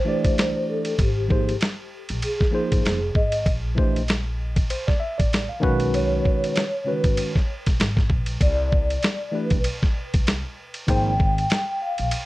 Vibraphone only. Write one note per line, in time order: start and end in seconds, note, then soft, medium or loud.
0.00 0.65 C5 loud
0.70 0.98 A4 medium
1.00 1.57 G4 medium
2.24 3.19 G#4 medium
3.16 3.44 D#5 loud
5.94 6.90 C#5 loud
6.88 7.16 B4 medium
8.42 9.37 D5 loud
9.35 9.63 B4 medium
10.89 11.84 G5 loud
11.82 12.10 F5 medium